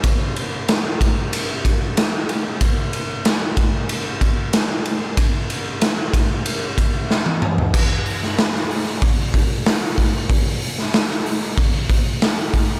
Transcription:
\new DrumStaff \with { instrumentName = "Drums" } \drummode { \time 4/4 \tempo 4 = 94 <bd cymr>8 cymr8 <cymr sn>8 <bd cymr>8 cymr8 <bd cymr>8 <cymr sn>8 cymr8 | <bd cymr>8 cymr8 <cymr sn>8 <bd cymr>8 cymr8 <bd cymr>8 <cymr sn>8 cymr8 | <bd cymr>8 cymr8 <cymr sn>8 <bd cymr>8 cymr8 <bd cymr>8 sn16 tommh16 toml16 tomfh16 | <cymc bd>8 hho16 sn16 <hho sn>16 sn16 hho8 <hho bd>8 <hho bd>8 <hho sn>8 <hho bd>8 |
<hho bd>8 hho16 sn16 <hho sn>16 sn16 hho8 <hho bd>8 <hho bd>8 <hho sn>8 <hho bd>8 | }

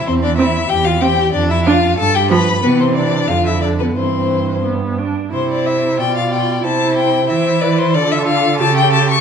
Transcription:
<<
  \new Staff \with { instrumentName = "Violin" } { \time 2/4 \key c \major \tempo 4 = 92 c''16 d''16 e''8 g''16 f''16 g''8 | d''16 e''16 f''8 a''16 g''16 b''8 | b'16 c''16 d''8 f''16 e''16 d''16 b'16 | c''4 r4 |
c''16 d''16 e''8 g''16 f''16 g''8 | a''8 g''8 e''8 d''16 c''16 | d''16 e''16 f''8 a''16 g''16 a''16 cis'''16 | }
  \new Staff \with { instrumentName = "Violin" } { \time 2/4 \key c \major c'16 d'16 e'8 g'16 f'16 g'8 | d'16 e'16 f'8 a'16 g'16 b'8 | b16 c'16 d'8 f'16 e'16 d'16 b16 | c'4 r4 |
c''4 d''4 | c''4 c''8 b'8 | a'4 a'4 | }
  \new Staff \with { instrumentName = "Viola" } { \time 2/4 \key c \major r8 c'16 r8. c'16 r16 | r8 d'16 r8. f16 r16 | e4 d4 | e4 b8 d'8 |
e'4 f'4 | e'4 e'4 | f'4 g'4 | }
  \new Staff \with { instrumentName = "Cello" } { \clef bass \time 2/4 \key c \major e,4 e,4 | f,4 g,4 | c4 f,4 | g,4. r8 |
c4 b,4 | c4 e4 | d4 cis4 | }
>>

